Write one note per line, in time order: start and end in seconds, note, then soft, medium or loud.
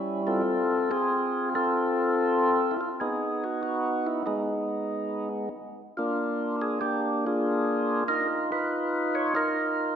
0.00 0.42 G3 medium
0.00 0.22 C#4 medium
0.00 0.42 E4 medium
0.27 0.90 C4 medium
0.27 0.90 F4 medium
0.27 0.92 A4 loud
0.91 1.54 C4 medium
0.91 1.54 F4 medium
0.91 1.49 G#4 medium
1.55 2.77 C4 medium
1.55 2.77 F4 medium
1.55 2.74 A4 loud
2.71 2.80 E4 medium
2.81 2.89 F4 medium
3.00 4.23 B3 medium
3.00 4.23 D#4 medium
3.00 3.45 G#4 medium
3.44 3.62 F#4 medium
3.63 4.08 F#4 medium
4.07 4.25 E4 medium
4.26 5.49 G#3 soft
4.26 5.49 B3 soft
4.26 5.29 D#4 medium
5.97 6.80 A#3 medium
5.97 6.80 D4 medium
5.97 6.56 F4 medium
6.62 6.79 G#4 medium
6.81 8.03 A#3 medium
6.81 7.25 D4 medium
6.81 7.25 G4 medium
7.26 8.04 D4 medium
7.26 8.04 F4 medium
7.26 8.04 G#4 medium
8.08 8.51 D#4 medium
8.08 8.51 F4 medium
8.08 8.28 A#4 medium
8.52 9.34 D#4 medium
8.52 9.34 F4 medium
8.52 9.16 B4 medium
9.15 9.35 C#5 loud
9.35 9.96 D#4 medium
9.35 9.96 F4 medium
9.35 9.96 A#4 medium